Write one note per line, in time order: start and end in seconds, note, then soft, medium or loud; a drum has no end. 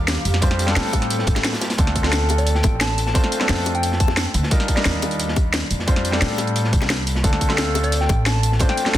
0.00 0.15 D#2 loud
0.00 0.41 G3 loud
0.00 0.42 D4 medium
0.00 0.44 D#4 medium
0.00 0.43 F4 medium
0.00 0.41 G4 medium
0.00 0.44 A#4 loud
0.00 0.41 F5 medium
0.00 1.75 D6 medium
0.07 snare loud
0.07 closed hi-hat loud
0.07 closed hi-hat medium
0.25 0.75 F2 medium
0.25 closed hi-hat medium
0.34 snare soft
0.41 0.64 G3 medium
0.41 0.65 C4 medium
0.41 0.66 D4 medium
0.41 0.66 F4 medium
0.41 1.77 A4 medium
0.41 0.66 C5 loud
0.41 1.77 G5 medium
0.41 kick loud
0.41 closed hi-hat medium
0.41 closed hi-hat loud
0.51 snare soft
0.59 closed hi-hat medium
0.66 1.75 G3 loud
0.66 1.76 C4 medium
0.66 1.77 D4 medium
0.66 1.77 F4 medium
0.66 snare medium
0.66 snare soft
0.66 closed hi-hat soft
0.70 1.78 A4 loud
0.76 1.27 A2 medium
0.76 snare loud
0.76 closed hi-hat loud
0.76 open hi-hat medium
0.93 kick medium
0.93 closed hi-hat medium
0.93 high bongo medium
1.02 snare soft
1.02 closed hi-hat soft
1.10 closed hi-hat loud
1.10 closed hi-hat medium
1.19 snare soft
1.27 1.35 A2 medium
1.27 kick loud
1.27 closed hi-hat medium
1.35 1.51 A2 medium
1.35 snare soft
1.35 closed hi-hat soft
1.35 high bongo soft
1.44 snare loud
1.44 closed hi-hat medium
1.44 closed hi-hat loud
1.53 snare loud
1.53 closed hi-hat medium
1.61 snare loud
1.61 closed hi-hat medium
1.61 high bongo soft
1.70 snare loud
1.70 closed hi-hat soft
1.70 closed hi-hat medium
1.77 2.62 D2 loud
1.77 2.00 A3 medium
1.77 2.02 C4 medium
1.77 2.02 D4 medium
1.77 2.02 F4 medium
1.77 2.03 A4 loud
1.77 kick loud
1.77 closed hi-hat medium
1.77 closed hi-hat loud
1.87 snare soft
1.96 kick medium
1.96 closed hi-hat medium
2.02 3.12 A3 medium
2.02 3.12 C4 medium
2.02 3.13 D4 medium
2.02 3.13 F4 medium
2.02 snare soft
2.02 snare medium
2.06 3.14 A4 loud
2.12 snare loud
2.12 closed hi-hat loud
2.29 closed hi-hat medium
2.29 high bongo medium
2.38 2.54 D5 medium
2.38 closed hi-hat soft
2.46 closed hi-hat loud
2.46 closed hi-hat medium
2.55 2.76 G5 medium
2.55 snare medium
2.63 3.14 A1 loud
2.63 kick loud
2.63 closed hi-hat medium
2.63 high bongo medium
2.81 3.05 A5 loud
2.81 snare loud
2.81 closed hi-hat medium
2.81 closed hi-hat loud
2.98 closed hi-hat medium
3.06 3.27 A5 loud
3.06 snare soft
3.14 3.37 A3 medium
3.14 3.38 C4 medium
3.14 3.38 D4 medium
3.14 3.39 F4 medium
3.14 3.39 C5 loud
3.14 kick loud
3.14 closed hi-hat loud
3.24 snare soft
3.32 closed hi-hat medium
3.38 4.48 A3 loud
3.38 4.49 C4 medium
3.38 4.49 D4 medium
3.38 4.50 F4 medium
3.38 snare soft
3.38 snare medium
3.43 4.50 A4 loud
3.49 4.25 F2 loud
3.49 snare loud
3.49 closed hi-hat medium
3.49 open hi-hat medium
3.66 closed hi-hat medium
3.66 high bongo medium
3.75 3.95 G5 medium
3.75 closed hi-hat soft
3.83 closed hi-hat medium
3.92 snare soft
4.00 4.26 A5 medium
4.00 kick loud
4.00 closed hi-hat medium
4.08 snare soft
4.08 high bongo medium
4.16 snare loud
4.16 closed hi-hat loud
4.16 closed hi-hat medium
4.34 4.50 D2 loud
4.34 closed hi-hat medium
4.43 snare medium
4.50 4.73 G3 medium
4.50 4.74 D4 medium
4.50 4.75 D#4 medium
4.50 4.75 F4 medium
4.50 4.75 A#4 loud
4.50 kick loud
4.50 closed hi-hat medium
4.60 snare soft
4.68 kick medium
4.68 closed hi-hat medium
4.75 5.85 G3 loud
4.75 5.85 D4 medium
4.75 5.86 D#4 medium
4.75 5.86 F4 medium
4.75 snare soft
4.75 snare medium
4.79 5.87 A#4 loud
4.85 5.61 D#2 medium
4.85 snare loud
4.85 closed hi-hat loud
4.85 closed hi-hat medium
5.02 closed hi-hat medium
5.02 high bongo medium
5.11 closed hi-hat soft
5.20 closed hi-hat medium
5.28 snare medium
5.36 kick loud
5.36 closed hi-hat medium
5.36 high bongo medium
5.53 snare loud
5.53 closed hi-hat medium
5.71 6.20 F2 medium
5.71 closed hi-hat medium
5.79 snare soft
5.87 6.10 G3 medium
5.87 6.11 C4 medium
5.87 6.11 D4 medium
5.87 6.11 F4 medium
5.87 6.12 C5 loud
5.87 kick loud
5.87 closed hi-hat medium
5.96 snare soft
6.05 closed hi-hat medium
6.11 7.21 G3 loud
6.11 7.21 C4 medium
6.11 7.22 D4 medium
6.11 7.23 F4 medium
6.11 snare soft
6.15 7.23 A4 loud
6.21 6.72 A2 loud
6.21 snare loud
6.21 closed hi-hat medium
6.21 open hi-hat medium
6.38 closed hi-hat medium
6.38 high bongo medium
6.47 closed hi-hat soft
6.56 closed hi-hat medium
6.64 snare soft
6.73 7.23 C2 medium
6.73 kick loud
6.73 closed hi-hat medium
6.81 snare soft
6.81 high bongo medium
6.90 snare loud
6.90 closed hi-hat medium
7.07 closed hi-hat medium
7.15 snare medium
7.23 8.08 D2 loud
7.23 7.46 A3 medium
7.23 7.47 C4 medium
7.23 7.48 D4 medium
7.23 7.48 F4 medium
7.23 7.48 A4 loud
7.23 kick loud
7.23 closed hi-hat medium
7.23 closed hi-hat loud
7.33 snare soft
7.41 kick medium
7.41 closed hi-hat medium
7.48 8.57 A3 loud
7.48 8.58 C4 medium
7.48 8.58 D4 medium
7.48 8.59 F4 medium
7.48 snare soft
7.52 8.59 A4 loud
7.58 snare loud
7.58 closed hi-hat medium
7.75 closed hi-hat medium
7.75 high bongo medium
7.83 7.99 D5 medium
7.83 closed hi-hat soft
7.92 closed hi-hat medium
8.01 8.21 G5 medium
8.01 snare soft
8.09 8.59 A1 loud
8.09 kick loud
8.09 closed hi-hat medium
8.09 high bongo medium
8.26 8.50 A5 loud
8.26 snare loud
8.26 closed hi-hat medium
8.43 closed hi-hat medium
8.52 snare soft
8.59 8.82 A3 medium
8.59 8.84 C4 medium
8.59 8.84 D4 medium
8.59 8.84 F4 medium
8.59 8.85 C5 loud
8.59 kick loud
8.59 closed hi-hat medium
8.69 8.89 G5 medium
8.69 snare soft
8.77 closed hi-hat medium
8.84 8.98 A3 loud
8.84 8.98 C4 medium
8.84 8.98 D4 medium
8.84 8.98 F4 medium
8.84 snare medium
8.84 snare soft
8.88 8.98 A4 loud
8.94 8.98 F2 loud
8.94 8.98 F5 medium
8.94 snare loud
8.94 closed hi-hat loud
8.94 open hi-hat medium